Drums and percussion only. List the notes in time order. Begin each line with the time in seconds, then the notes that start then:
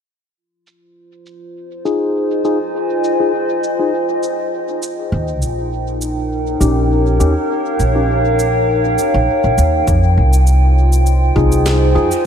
0.67 shaker
1.26 shaker
1.86 shaker
2.45 shaker
3.04 shaker
3.64 shaker
4.23 shaker
4.82 shaker
5.42 shaker
6.01 shaker
6.61 shaker
7.20 shaker
7.80 shaker
8.39 shaker
8.98 shaker
9.58 shaker
9.87 kick, shaker
10.33 shaker
10.47 shaker
10.93 shaker
11.06 shaker
11.36 kick
11.52 shaker
11.66 snare, shaker
12.11 shaker